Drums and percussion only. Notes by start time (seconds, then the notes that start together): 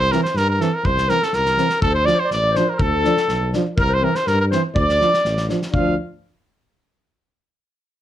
0.12 snare
0.25 snare
0.37 snare
0.61 snare
0.85 kick
0.98 snare
1.09 snare
1.23 snare
1.33 snare
1.46 snare
1.58 snare
1.70 snare
1.82 kick
2.07 snare
2.31 snare
2.56 snare
2.79 kick
3.05 snare
3.17 snare
3.29 snare
3.53 snare
3.78 kick
4.15 snare
4.27 snare
4.52 snare
4.76 kick
4.89 snare
5.01 snare
5.14 snare
5.25 snare
5.37 snare
5.50 snare
5.62 snare
5.74 kick